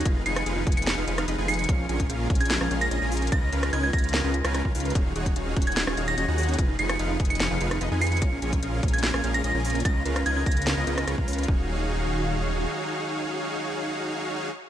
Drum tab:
HH |x---x-x-x---xxxxx---x-x-x---oxxx|x---x-x-x---xxxxx---x-x-x---oxxx|x---x-x-x---xxxxx---x-x-x---oxxx|x---x-x-x---xxxxx---x-x-x---oxxx|
SD |------r---------o-----r---------|----------------o-r-------------|------r---------o-----r-r-------|----------------o-r-------------|
BD |o-----------o-------------------|o-----o-----o-------------------|o-----------o-------------o-----|o-----o-----o-------------------|

HH |x---x-x-x---xxxxx---x-x-x---oxxx|x---x-x-x---xxxxx---x-x-x---oxxx|x---x-x-x---xxxxx---x-x-x---oxxx|--------------------------------|
SD |------r---------o-----r---------|----------------o-r-------------|------r---------o-----r-r-------|--------------------------------|
BD |o-----------o-------------------|o-----o-----o-------------------|o-----------o-------------o-----|o-------------------------------|

HH |--------------------------------|
SD |--------------------------------|
BD |--------------------------------|